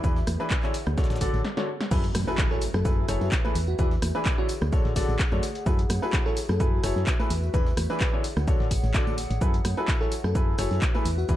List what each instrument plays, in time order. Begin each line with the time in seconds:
Already playing: ambient pad F#4 G#4 B4 E5
0.04 fm bass E2, upright piano E3 D4 E4 G#4 B4, kick, tambourine, shaker
0.15 ambient pad C#5, snare, tambourine
0.23 ambient pad F#5
0.27 fm bass E2, cross-stick, open hi-hat, tambourine, high conga, shaker
0.40 upright piano E3 D4 E4 G#4 B4, tambourine
0.50 kick, snare, clap, tambourine, shaker
0.63 upright piano D3 D4 E4 G#4 C#5, clap, tambourine
0.74 open hi-hat, tambourine, shaker
0.86 fm bass D2, cross-stick, tambourine, high conga
0.98 upright piano D3 D4 F#4 A4 C#5, kick, snare, tambourine, shaker
1.04 snare, shaker
1.10 fm bass A1, snare, tambourine, shaker
1.16 snare, shaker
1.21 upright piano D3 D4 F#4 A4 D5, kick, open hi-hat, tambourine, shaker
1.34 fm bass A1, snare, tambourine
1.45 snare
1.57 upright piano D3 D4 F#4 A4 C#5, snare
1.81 snare
1.91 fm bass F#2, upright piano F#3 E4 G#4 A4 B4, ambient pad F#4, kick, crash, tambourine, impact, shaker
2.04 closed hi-hat, tambourine
2.15 fm bass F#2, ambient pad E5, cross-stick, open hi-hat, tambourine, high conga, shaker
2.27 upright piano F#3 E4 G#4 A4 B4, tambourine
2.33 ambient pad B4
2.38 kick, snare, clap, tambourine, shaker
2.51 upright piano F#3 E4 G#4 A4 C#5, fm electric piano A4, snare
2.61 open hi-hat, tambourine, shaker
2.74 fm bass F#2, fm electric piano A4, cross-stick, snare, tambourine, high conga
2.85 upright piano F#3 E4 G#4 A4 B4, kick, tambourine, shaker
3.08 fm bass F#1, upright piano F#3 E4 G#4 A4 C#5, cross-stick, open hi-hat, tambourine, shaker
3.21 fm bass F#2, snare, tambourine
3.32 kick, snare, clap, tambourine, shaker
3.44 upright piano E3 E4 G#4 A4 B4, tambourine, high conga
3.55 fm bass E2, ambient pad G#4, open hi-hat, tambourine, shaker
3.67 fm electric piano F#4, tambourine
3.79 fm bass E2, upright piano E3 D4 E4 G#4 B4, fm electric piano F#4, kick, tambourine, shaker
3.85 ambient pad F#5
3.91 snare, tambourine
3.98 ambient pad C#5
4.02 fm bass E2, cross-stick, open hi-hat, tambourine, high conga, shaker
4.15 upright piano E3 D4 E4 G#4 B4, tambourine
4.25 kick, snare, clap, tambourine, shaker
4.38 upright piano D3 D4 E4 G#4 C#5, fm electric piano F#4
4.49 open hi-hat, tambourine, shaker
4.61 fm bass D2, cross-stick, tambourine, high conga
4.73 upright piano D3 D4 F#4 A4 C#5, kick, tambourine, shaker
4.85 fm bass A1, snare
4.96 upright piano D3 D4 F#4 A4 D5, kick, open hi-hat, tambourine, shaker
5.08 fm bass A1, snare, tambourine
5.19 kick, snare, clap, tambourine, shaker
5.32 fm bass F#2, upright piano D3 D4 F#4 A4 C#5, tambourine, high conga
5.43 snare, open hi-hat, tambourine, shaker
5.55 closed hi-hat, tambourine
5.66 fm bass F#2, upright piano F#3 E4 G#4 A4 B4, ambient pad F#4, kick, tambourine, shaker
5.79 closed hi-hat, tambourine
5.90 fm bass F#2, cross-stick, open hi-hat, tambourine, high conga, shaker
6.02 upright piano F#3 E4 G#4 A4 B4, tambourine
6.13 kick, snare, clap, tambourine, shaker
6.26 upright piano F#3 E4 G#4 A4 C#5, fm electric piano A4, snare
6.30 ambient pad B4
6.37 ambient pad E5, open hi-hat, tambourine, shaker
6.49 fm bass F#2, fm electric piano A4, cross-stick, snare, tambourine, high conga
6.60 upright piano F#3 E4 G#4 A4 B4, kick, tambourine, shaker
6.83 fm bass F#1, upright piano F#3 E4 G#4 A4 C#5, cross-stick, open hi-hat, tambourine, shaker
6.96 fm bass F#2, snare
7.06 kick, snare, clap, tambourine, shaker
7.20 upright piano E3 E4 G#4 A4 B4, tambourine, high conga
7.30 fm bass E2, ambient pad G#4, open hi-hat, tambourine, shaker
7.43 tambourine
7.54 fm bass E2, upright piano E3 D4 E4 G#4 B4, fm electric piano B4, kick, tambourine, shaker
7.66 snare, tambourine
7.73 ambient pad C#5 F#5
7.77 fm bass E2, cross-stick, open hi-hat, tambourine, high conga, shaker
7.90 upright piano E3 D4 E4 G#4 B4, tambourine
8.00 kick, snare, clap, tambourine, shaker
8.13 upright piano D3 D4 E4 G#4 C#5
8.24 open hi-hat, tambourine, shaker
8.37 fm bass D2, cross-stick, tambourine, high conga
8.48 upright piano D3 D4 F#4 A4 C#5, kick, tambourine, shaker
8.60 fm bass A1, snare
8.71 kick, open hi-hat, tambourine, shaker
8.84 fm bass A1, snare, tambourine
8.94 upright piano D3 D4 F#4 A4 D5, kick, snare, clap, tambourine, shaker
9.07 tambourine, high conga
9.18 snare, open hi-hat, tambourine, shaker
9.30 fm bass A1, closed hi-hat, tambourine
9.41 fm bass F#2, upright piano F#3 E4 G#4 A4 B4, ambient pad F#4, kick, tambourine, shaker
9.54 closed hi-hat, tambourine
9.65 fm bass F#2, cross-stick, open hi-hat, tambourine, high conga, shaker
9.77 upright piano F#3 E4 G#4 A4 B4, tambourine
9.88 kick, snare, clap, tambourine, shaker
9.95 ambient pad E5
10.01 upright piano F#3 E4 G#4 A4 C#5, fm electric piano A4, snare
10.12 ambient pad B4, open hi-hat, tambourine, shaker
10.24 fm bass F#2, fm electric piano A4, cross-stick, snare, tambourine, high conga
10.35 upright piano F#3 E4 G#4 A4 B4, kick, tambourine, shaker
10.58 fm bass F#1, upright piano F#3 E4 G#4 A4 C#5, cross-stick, open hi-hat, tambourine, shaker
10.71 fm bass F#2, snare, tambourine
10.82 kick, snare, clap, tambourine, shaker
10.95 upright piano E3 E4 G#4 A4 B4, tambourine, high conga
11.05 fm bass E2, ambient pad G#4, open hi-hat, tambourine, shaker
11.18 fm electric piano F#4, tambourine
11.25 ambient pad C#5
11.29 fm bass E2, upright piano E3 D4 E4 G#4 B4, fm electric piano F#4, kick, tambourine, shaker